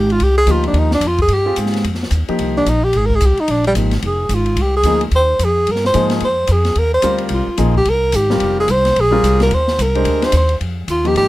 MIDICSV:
0, 0, Header, 1, 6, 480
1, 0, Start_track
1, 0, Tempo, 273973
1, 1305, Time_signature, 4, 2, 24, 8
1, 19764, End_track
2, 0, Start_track
2, 0, Title_t, "Tenor saxophone"
2, 0, Program_c, 0, 66
2, 0, Note_on_c, 0, 67, 85
2, 210, Note_on_c, 0, 65, 97
2, 236, Note_off_c, 0, 67, 0
2, 409, Note_on_c, 0, 67, 93
2, 435, Note_off_c, 0, 65, 0
2, 649, Note_off_c, 0, 67, 0
2, 659, Note_on_c, 0, 68, 108
2, 899, Note_on_c, 0, 65, 90
2, 925, Note_off_c, 0, 68, 0
2, 1156, Note_off_c, 0, 65, 0
2, 1175, Note_on_c, 0, 62, 86
2, 1375, Note_on_c, 0, 63, 80
2, 1402, Note_off_c, 0, 62, 0
2, 1634, Note_off_c, 0, 63, 0
2, 1656, Note_on_c, 0, 62, 93
2, 1877, Note_on_c, 0, 65, 91
2, 1904, Note_off_c, 0, 62, 0
2, 2124, Note_off_c, 0, 65, 0
2, 2132, Note_on_c, 0, 68, 101
2, 2333, Note_on_c, 0, 67, 93
2, 2359, Note_off_c, 0, 68, 0
2, 2777, Note_off_c, 0, 67, 0
2, 4506, Note_on_c, 0, 62, 103
2, 4710, Note_on_c, 0, 63, 90
2, 4737, Note_off_c, 0, 62, 0
2, 4973, Note_on_c, 0, 67, 99
2, 4999, Note_off_c, 0, 63, 0
2, 5203, Note_on_c, 0, 68, 78
2, 5230, Note_off_c, 0, 67, 0
2, 5360, Note_on_c, 0, 70, 101
2, 5386, Note_off_c, 0, 68, 0
2, 5528, Note_on_c, 0, 68, 88
2, 5554, Note_off_c, 0, 70, 0
2, 5703, Note_on_c, 0, 67, 88
2, 5729, Note_off_c, 0, 68, 0
2, 5961, Note_on_c, 0, 63, 99
2, 5987, Note_off_c, 0, 67, 0
2, 6141, Note_on_c, 0, 62, 100
2, 6167, Note_off_c, 0, 63, 0
2, 6412, Note_off_c, 0, 62, 0
2, 6432, Note_on_c, 0, 55, 100
2, 6531, Note_off_c, 0, 55, 0
2, 7121, Note_on_c, 0, 68, 76
2, 7610, Note_on_c, 0, 65, 83
2, 7637, Note_off_c, 0, 68, 0
2, 8089, Note_on_c, 0, 67, 81
2, 8116, Note_off_c, 0, 65, 0
2, 8339, Note_off_c, 0, 67, 0
2, 8350, Note_on_c, 0, 68, 106
2, 8776, Note_off_c, 0, 68, 0
2, 9031, Note_on_c, 0, 72, 95
2, 9537, Note_on_c, 0, 68, 95
2, 9563, Note_off_c, 0, 72, 0
2, 10009, Note_on_c, 0, 70, 97
2, 10036, Note_off_c, 0, 68, 0
2, 10265, Note_off_c, 0, 70, 0
2, 10273, Note_on_c, 0, 72, 97
2, 10698, Note_off_c, 0, 72, 0
2, 10943, Note_on_c, 0, 72, 84
2, 11420, Note_on_c, 0, 68, 89
2, 11447, Note_off_c, 0, 72, 0
2, 11892, Note_on_c, 0, 70, 104
2, 11918, Note_off_c, 0, 68, 0
2, 12149, Note_off_c, 0, 70, 0
2, 12159, Note_on_c, 0, 72, 101
2, 12600, Note_off_c, 0, 72, 0
2, 12859, Note_on_c, 0, 65, 77
2, 13557, Note_off_c, 0, 65, 0
2, 13616, Note_on_c, 0, 67, 104
2, 13829, Note_on_c, 0, 70, 113
2, 13855, Note_off_c, 0, 67, 0
2, 14293, Note_on_c, 0, 67, 99
2, 14320, Note_off_c, 0, 70, 0
2, 15048, Note_off_c, 0, 67, 0
2, 15067, Note_on_c, 0, 68, 101
2, 15260, Note_on_c, 0, 72, 109
2, 15287, Note_off_c, 0, 68, 0
2, 15775, Note_on_c, 0, 68, 112
2, 15802, Note_off_c, 0, 72, 0
2, 16511, Note_off_c, 0, 68, 0
2, 16521, Note_on_c, 0, 70, 105
2, 16724, Note_on_c, 0, 72, 96
2, 16750, Note_off_c, 0, 70, 0
2, 17200, Note_on_c, 0, 70, 103
2, 17227, Note_off_c, 0, 72, 0
2, 17949, Note_on_c, 0, 72, 102
2, 17975, Note_off_c, 0, 70, 0
2, 18119, Note_off_c, 0, 72, 0
2, 18170, Note_on_c, 0, 72, 88
2, 18500, Note_off_c, 0, 72, 0
2, 19108, Note_on_c, 0, 65, 90
2, 19400, Note_on_c, 0, 67, 92
2, 19426, Note_off_c, 0, 65, 0
2, 19562, Note_off_c, 0, 67, 0
2, 19573, Note_on_c, 0, 67, 112
2, 19764, Note_off_c, 0, 67, 0
2, 19764, End_track
3, 0, Start_track
3, 0, Title_t, "Grand piano"
3, 0, Program_c, 1, 0
3, 826, Note_on_c, 1, 53, 65
3, 830, Note_on_c, 1, 58, 58
3, 833, Note_on_c, 1, 63, 60
3, 833, Note_on_c, 1, 67, 72
3, 1540, Note_off_c, 1, 53, 0
3, 1542, Note_off_c, 1, 58, 0
3, 1544, Note_off_c, 1, 63, 0
3, 1544, Note_off_c, 1, 67, 0
3, 2550, Note_on_c, 1, 67, 71
3, 2554, Note_on_c, 1, 60, 65
3, 2561, Note_on_c, 1, 65, 62
3, 2565, Note_on_c, 1, 68, 67
3, 3182, Note_off_c, 1, 67, 0
3, 3184, Note_off_c, 1, 60, 0
3, 3187, Note_off_c, 1, 65, 0
3, 3189, Note_off_c, 1, 68, 0
3, 4002, Note_on_c, 1, 63, 64
3, 4005, Note_on_c, 1, 58, 66
3, 4008, Note_on_c, 1, 53, 69
3, 4012, Note_on_c, 1, 67, 79
3, 4626, Note_off_c, 1, 63, 0
3, 4628, Note_off_c, 1, 58, 0
3, 4629, Note_off_c, 1, 53, 0
3, 4631, Note_off_c, 1, 67, 0
3, 6575, Note_on_c, 1, 53, 62
3, 6585, Note_on_c, 1, 58, 55
3, 6588, Note_on_c, 1, 63, 51
3, 6593, Note_on_c, 1, 67, 66
3, 6840, Note_off_c, 1, 53, 0
3, 6845, Note_off_c, 1, 58, 0
3, 6846, Note_off_c, 1, 63, 0
3, 6849, Note_off_c, 1, 67, 0
3, 8506, Note_on_c, 1, 53, 72
3, 8512, Note_on_c, 1, 58, 65
3, 8516, Note_on_c, 1, 63, 68
3, 8524, Note_on_c, 1, 68, 81
3, 8764, Note_off_c, 1, 53, 0
3, 8767, Note_off_c, 1, 58, 0
3, 8769, Note_off_c, 1, 63, 0
3, 8773, Note_off_c, 1, 68, 0
3, 10405, Note_on_c, 1, 53, 79
3, 10409, Note_on_c, 1, 58, 71
3, 10418, Note_on_c, 1, 63, 68
3, 10421, Note_on_c, 1, 68, 85
3, 10888, Note_off_c, 1, 53, 0
3, 10890, Note_off_c, 1, 58, 0
3, 10895, Note_off_c, 1, 63, 0
3, 10896, Note_off_c, 1, 68, 0
3, 12305, Note_on_c, 1, 55, 76
3, 12320, Note_on_c, 1, 60, 69
3, 12327, Note_on_c, 1, 70, 74
3, 12329, Note_on_c, 1, 65, 71
3, 13034, Note_off_c, 1, 55, 0
3, 13042, Note_off_c, 1, 60, 0
3, 13045, Note_off_c, 1, 70, 0
3, 13046, Note_off_c, 1, 65, 0
3, 13273, Note_on_c, 1, 58, 73
3, 13279, Note_on_c, 1, 53, 75
3, 13285, Note_on_c, 1, 68, 85
3, 13290, Note_on_c, 1, 63, 74
3, 13547, Note_off_c, 1, 58, 0
3, 13550, Note_off_c, 1, 53, 0
3, 13554, Note_off_c, 1, 68, 0
3, 13556, Note_off_c, 1, 63, 0
3, 14550, Note_on_c, 1, 55, 74
3, 14551, Note_on_c, 1, 60, 67
3, 14556, Note_on_c, 1, 65, 70
3, 14567, Note_on_c, 1, 70, 72
3, 15179, Note_off_c, 1, 55, 0
3, 15179, Note_off_c, 1, 60, 0
3, 15181, Note_off_c, 1, 65, 0
3, 15187, Note_off_c, 1, 70, 0
3, 15960, Note_on_c, 1, 55, 88
3, 15976, Note_on_c, 1, 60, 72
3, 15980, Note_on_c, 1, 65, 80
3, 15982, Note_on_c, 1, 70, 88
3, 16605, Note_off_c, 1, 55, 0
3, 16613, Note_off_c, 1, 60, 0
3, 16615, Note_off_c, 1, 65, 0
3, 16616, Note_off_c, 1, 70, 0
3, 17436, Note_on_c, 1, 62, 64
3, 17443, Note_on_c, 1, 56, 70
3, 17450, Note_on_c, 1, 72, 79
3, 17453, Note_on_c, 1, 67, 61
3, 18066, Note_off_c, 1, 62, 0
3, 18069, Note_off_c, 1, 56, 0
3, 18073, Note_off_c, 1, 72, 0
3, 18074, Note_off_c, 1, 67, 0
3, 19352, Note_on_c, 1, 53, 61
3, 19354, Note_on_c, 1, 58, 54
3, 19363, Note_on_c, 1, 63, 61
3, 19366, Note_on_c, 1, 67, 68
3, 19764, Note_off_c, 1, 53, 0
3, 19764, Note_off_c, 1, 58, 0
3, 19764, Note_off_c, 1, 63, 0
3, 19764, Note_off_c, 1, 67, 0
3, 19764, End_track
4, 0, Start_track
4, 0, Title_t, "Upright bass"
4, 0, Program_c, 2, 32
4, 0, Note_on_c, 2, 32, 101
4, 336, Note_off_c, 2, 32, 0
4, 355, Note_on_c, 2, 36, 77
4, 805, Note_off_c, 2, 36, 0
4, 815, Note_on_c, 2, 38, 90
4, 1271, Note_off_c, 2, 38, 0
4, 1282, Note_on_c, 2, 39, 75
4, 1751, Note_off_c, 2, 39, 0
4, 1762, Note_on_c, 2, 41, 98
4, 2232, Note_off_c, 2, 41, 0
4, 2242, Note_on_c, 2, 43, 81
4, 2718, Note_off_c, 2, 43, 0
4, 2752, Note_on_c, 2, 44, 81
4, 3213, Note_off_c, 2, 44, 0
4, 3227, Note_on_c, 2, 41, 70
4, 3684, Note_off_c, 2, 41, 0
4, 3695, Note_on_c, 2, 39, 90
4, 3971, Note_off_c, 2, 39, 0
4, 4189, Note_on_c, 2, 36, 80
4, 4649, Note_off_c, 2, 36, 0
4, 4660, Note_on_c, 2, 34, 81
4, 5124, Note_off_c, 2, 34, 0
4, 5152, Note_on_c, 2, 32, 90
4, 5600, Note_off_c, 2, 32, 0
4, 5611, Note_on_c, 2, 36, 92
4, 5887, Note_off_c, 2, 36, 0
4, 6100, Note_on_c, 2, 34, 84
4, 6548, Note_off_c, 2, 34, 0
4, 6559, Note_on_c, 2, 32, 91
4, 7032, Note_off_c, 2, 32, 0
4, 7055, Note_on_c, 2, 29, 79
4, 7507, Note_off_c, 2, 29, 0
4, 7517, Note_on_c, 2, 32, 94
4, 7974, Note_off_c, 2, 32, 0
4, 7984, Note_on_c, 2, 36, 81
4, 8454, Note_off_c, 2, 36, 0
4, 8465, Note_on_c, 2, 38, 84
4, 8944, Note_off_c, 2, 38, 0
4, 8958, Note_on_c, 2, 39, 82
4, 9431, Note_off_c, 2, 39, 0
4, 9444, Note_on_c, 2, 41, 90
4, 9914, Note_off_c, 2, 41, 0
4, 9938, Note_on_c, 2, 43, 77
4, 10401, Note_off_c, 2, 43, 0
4, 10414, Note_on_c, 2, 44, 83
4, 10871, Note_off_c, 2, 44, 0
4, 10881, Note_on_c, 2, 41, 84
4, 11348, Note_off_c, 2, 41, 0
4, 11358, Note_on_c, 2, 41, 100
4, 11826, Note_off_c, 2, 41, 0
4, 11836, Note_on_c, 2, 39, 73
4, 12310, Note_off_c, 2, 39, 0
4, 12320, Note_on_c, 2, 38, 82
4, 12786, Note_off_c, 2, 38, 0
4, 12797, Note_on_c, 2, 36, 93
4, 13077, Note_off_c, 2, 36, 0
4, 13279, Note_on_c, 2, 34, 96
4, 13752, Note_off_c, 2, 34, 0
4, 13766, Note_on_c, 2, 36, 81
4, 14235, Note_off_c, 2, 36, 0
4, 14247, Note_on_c, 2, 32, 98
4, 14716, Note_off_c, 2, 32, 0
4, 14729, Note_on_c, 2, 29, 81
4, 15198, Note_off_c, 2, 29, 0
4, 15205, Note_on_c, 2, 36, 103
4, 15676, Note_off_c, 2, 36, 0
4, 15701, Note_on_c, 2, 34, 84
4, 16165, Note_off_c, 2, 34, 0
4, 16176, Note_on_c, 2, 36, 97
4, 16643, Note_off_c, 2, 36, 0
4, 16665, Note_on_c, 2, 39, 83
4, 17128, Note_off_c, 2, 39, 0
4, 17145, Note_on_c, 2, 36, 111
4, 17599, Note_off_c, 2, 36, 0
4, 17610, Note_on_c, 2, 38, 80
4, 18082, Note_off_c, 2, 38, 0
4, 18091, Note_on_c, 2, 39, 90
4, 18564, Note_off_c, 2, 39, 0
4, 18580, Note_on_c, 2, 41, 77
4, 19050, Note_off_c, 2, 41, 0
4, 19058, Note_on_c, 2, 39, 87
4, 19525, Note_off_c, 2, 39, 0
4, 19535, Note_on_c, 2, 32, 76
4, 19764, Note_off_c, 2, 32, 0
4, 19764, End_track
5, 0, Start_track
5, 0, Title_t, "Muted upright bass strokes"
5, 4005, Note_on_c, 9, 29, 36
5, 4180, Note_off_c, 9, 29, 0
5, 5915, Note_on_c, 9, 29, 42
5, 6090, Note_off_c, 9, 29, 0
5, 13091, Note_on_c, 9, 29, 43
5, 13266, Note_off_c, 9, 29, 0
5, 19764, End_track
6, 0, Start_track
6, 0, Title_t, "Drums"
6, 174, Note_on_c, 9, 51, 41
6, 347, Note_off_c, 9, 51, 0
6, 347, Note_on_c, 9, 51, 64
6, 522, Note_off_c, 9, 51, 0
6, 819, Note_on_c, 9, 44, 52
6, 819, Note_on_c, 9, 51, 68
6, 994, Note_off_c, 9, 44, 0
6, 994, Note_off_c, 9, 51, 0
6, 1114, Note_on_c, 9, 51, 44
6, 1289, Note_off_c, 9, 51, 0
6, 1295, Note_on_c, 9, 51, 59
6, 1471, Note_off_c, 9, 51, 0
6, 1598, Note_on_c, 9, 38, 60
6, 1772, Note_on_c, 9, 44, 53
6, 1772, Note_on_c, 9, 51, 76
6, 1773, Note_off_c, 9, 38, 0
6, 1948, Note_off_c, 9, 44, 0
6, 1948, Note_off_c, 9, 51, 0
6, 2075, Note_on_c, 9, 51, 42
6, 2080, Note_on_c, 9, 36, 51
6, 2250, Note_off_c, 9, 51, 0
6, 2251, Note_on_c, 9, 51, 66
6, 2255, Note_off_c, 9, 36, 0
6, 2426, Note_off_c, 9, 51, 0
6, 2736, Note_on_c, 9, 44, 64
6, 2736, Note_on_c, 9, 51, 73
6, 2909, Note_on_c, 9, 38, 34
6, 2911, Note_off_c, 9, 44, 0
6, 2911, Note_off_c, 9, 51, 0
6, 3040, Note_on_c, 9, 51, 44
6, 3073, Note_off_c, 9, 38, 0
6, 3073, Note_on_c, 9, 38, 38
6, 3215, Note_off_c, 9, 51, 0
6, 3231, Note_on_c, 9, 51, 67
6, 3248, Note_off_c, 9, 38, 0
6, 3406, Note_off_c, 9, 51, 0
6, 3409, Note_on_c, 9, 38, 30
6, 3556, Note_off_c, 9, 38, 0
6, 3556, Note_on_c, 9, 38, 45
6, 3690, Note_on_c, 9, 44, 59
6, 3690, Note_on_c, 9, 51, 71
6, 3731, Note_off_c, 9, 38, 0
6, 3865, Note_off_c, 9, 44, 0
6, 3865, Note_off_c, 9, 51, 0
6, 4002, Note_on_c, 9, 51, 42
6, 4177, Note_off_c, 9, 51, 0
6, 4181, Note_on_c, 9, 51, 66
6, 4357, Note_off_c, 9, 51, 0
6, 4666, Note_on_c, 9, 44, 59
6, 4666, Note_on_c, 9, 51, 74
6, 4841, Note_off_c, 9, 44, 0
6, 4841, Note_off_c, 9, 51, 0
6, 5130, Note_on_c, 9, 51, 61
6, 5305, Note_off_c, 9, 51, 0
6, 5432, Note_on_c, 9, 36, 60
6, 5607, Note_off_c, 9, 36, 0
6, 5615, Note_on_c, 9, 44, 60
6, 5615, Note_on_c, 9, 51, 67
6, 5790, Note_off_c, 9, 44, 0
6, 5790, Note_off_c, 9, 51, 0
6, 5911, Note_on_c, 9, 51, 41
6, 6086, Note_off_c, 9, 51, 0
6, 6092, Note_on_c, 9, 51, 72
6, 6267, Note_off_c, 9, 51, 0
6, 6382, Note_on_c, 9, 51, 42
6, 6557, Note_off_c, 9, 51, 0
6, 6571, Note_on_c, 9, 44, 59
6, 6571, Note_on_c, 9, 51, 81
6, 6746, Note_off_c, 9, 44, 0
6, 6746, Note_off_c, 9, 51, 0
6, 6854, Note_on_c, 9, 51, 46
6, 6861, Note_on_c, 9, 38, 32
6, 7029, Note_off_c, 9, 51, 0
6, 7036, Note_off_c, 9, 38, 0
6, 7050, Note_on_c, 9, 51, 66
6, 7225, Note_off_c, 9, 51, 0
6, 7521, Note_on_c, 9, 44, 65
6, 7521, Note_on_c, 9, 51, 74
6, 7696, Note_off_c, 9, 44, 0
6, 7696, Note_off_c, 9, 51, 0
6, 7808, Note_on_c, 9, 51, 46
6, 7983, Note_off_c, 9, 51, 0
6, 7999, Note_on_c, 9, 51, 74
6, 8174, Note_off_c, 9, 51, 0
6, 8469, Note_on_c, 9, 44, 55
6, 8469, Note_on_c, 9, 51, 81
6, 8645, Note_off_c, 9, 44, 0
6, 8645, Note_off_c, 9, 51, 0
6, 8775, Note_on_c, 9, 51, 48
6, 8950, Note_off_c, 9, 51, 0
6, 8959, Note_on_c, 9, 51, 64
6, 9134, Note_off_c, 9, 51, 0
6, 9449, Note_on_c, 9, 44, 64
6, 9449, Note_on_c, 9, 51, 69
6, 9624, Note_off_c, 9, 44, 0
6, 9624, Note_off_c, 9, 51, 0
6, 9930, Note_on_c, 9, 51, 68
6, 10085, Note_on_c, 9, 38, 34
6, 10105, Note_off_c, 9, 51, 0
6, 10245, Note_off_c, 9, 38, 0
6, 10245, Note_on_c, 9, 38, 47
6, 10403, Note_on_c, 9, 44, 55
6, 10403, Note_on_c, 9, 51, 76
6, 10420, Note_off_c, 9, 38, 0
6, 10579, Note_off_c, 9, 44, 0
6, 10579, Note_off_c, 9, 51, 0
6, 10681, Note_on_c, 9, 51, 47
6, 10688, Note_on_c, 9, 38, 50
6, 10856, Note_off_c, 9, 51, 0
6, 10863, Note_off_c, 9, 38, 0
6, 10870, Note_on_c, 9, 51, 58
6, 11045, Note_off_c, 9, 51, 0
6, 11341, Note_on_c, 9, 44, 54
6, 11341, Note_on_c, 9, 51, 78
6, 11516, Note_off_c, 9, 44, 0
6, 11516, Note_off_c, 9, 51, 0
6, 11643, Note_on_c, 9, 51, 45
6, 11650, Note_on_c, 9, 38, 32
6, 11819, Note_off_c, 9, 51, 0
6, 11826, Note_off_c, 9, 38, 0
6, 11834, Note_on_c, 9, 51, 67
6, 12009, Note_off_c, 9, 51, 0
6, 12300, Note_on_c, 9, 44, 63
6, 12300, Note_on_c, 9, 51, 77
6, 12475, Note_off_c, 9, 44, 0
6, 12475, Note_off_c, 9, 51, 0
6, 12585, Note_on_c, 9, 51, 51
6, 12760, Note_off_c, 9, 51, 0
6, 12768, Note_on_c, 9, 51, 68
6, 12944, Note_off_c, 9, 51, 0
6, 13272, Note_on_c, 9, 44, 59
6, 13272, Note_on_c, 9, 51, 75
6, 13447, Note_off_c, 9, 44, 0
6, 13447, Note_off_c, 9, 51, 0
6, 13571, Note_on_c, 9, 36, 46
6, 13746, Note_off_c, 9, 36, 0
6, 13760, Note_on_c, 9, 51, 67
6, 13936, Note_off_c, 9, 51, 0
6, 14230, Note_on_c, 9, 44, 68
6, 14230, Note_on_c, 9, 51, 73
6, 14405, Note_off_c, 9, 44, 0
6, 14405, Note_off_c, 9, 51, 0
6, 14544, Note_on_c, 9, 38, 54
6, 14718, Note_on_c, 9, 51, 73
6, 14720, Note_off_c, 9, 38, 0
6, 14893, Note_off_c, 9, 51, 0
6, 15205, Note_on_c, 9, 44, 56
6, 15205, Note_on_c, 9, 51, 68
6, 15380, Note_off_c, 9, 44, 0
6, 15380, Note_off_c, 9, 51, 0
6, 15504, Note_on_c, 9, 51, 49
6, 15511, Note_on_c, 9, 38, 36
6, 15679, Note_off_c, 9, 51, 0
6, 15686, Note_off_c, 9, 38, 0
6, 15701, Note_on_c, 9, 51, 67
6, 15876, Note_off_c, 9, 51, 0
6, 16185, Note_on_c, 9, 44, 57
6, 16185, Note_on_c, 9, 51, 74
6, 16360, Note_off_c, 9, 44, 0
6, 16360, Note_off_c, 9, 51, 0
6, 16468, Note_on_c, 9, 51, 46
6, 16475, Note_on_c, 9, 38, 47
6, 16643, Note_off_c, 9, 51, 0
6, 16650, Note_off_c, 9, 38, 0
6, 16658, Note_on_c, 9, 51, 69
6, 16833, Note_off_c, 9, 51, 0
6, 16952, Note_on_c, 9, 38, 45
6, 17127, Note_off_c, 9, 38, 0
6, 17150, Note_on_c, 9, 44, 65
6, 17150, Note_on_c, 9, 51, 70
6, 17325, Note_off_c, 9, 44, 0
6, 17325, Note_off_c, 9, 51, 0
6, 17436, Note_on_c, 9, 51, 44
6, 17609, Note_off_c, 9, 51, 0
6, 17609, Note_on_c, 9, 51, 69
6, 17784, Note_off_c, 9, 51, 0
6, 17910, Note_on_c, 9, 51, 53
6, 17917, Note_on_c, 9, 38, 60
6, 18082, Note_off_c, 9, 51, 0
6, 18082, Note_on_c, 9, 44, 57
6, 18082, Note_on_c, 9, 51, 81
6, 18092, Note_off_c, 9, 38, 0
6, 18257, Note_off_c, 9, 44, 0
6, 18257, Note_off_c, 9, 51, 0
6, 18375, Note_on_c, 9, 51, 47
6, 18550, Note_off_c, 9, 51, 0
6, 18584, Note_on_c, 9, 51, 54
6, 18759, Note_off_c, 9, 51, 0
6, 19062, Note_on_c, 9, 44, 51
6, 19062, Note_on_c, 9, 51, 68
6, 19237, Note_off_c, 9, 44, 0
6, 19237, Note_off_c, 9, 51, 0
6, 19359, Note_on_c, 9, 51, 44
6, 19534, Note_off_c, 9, 51, 0
6, 19548, Note_on_c, 9, 51, 65
6, 19723, Note_off_c, 9, 51, 0
6, 19764, End_track
0, 0, End_of_file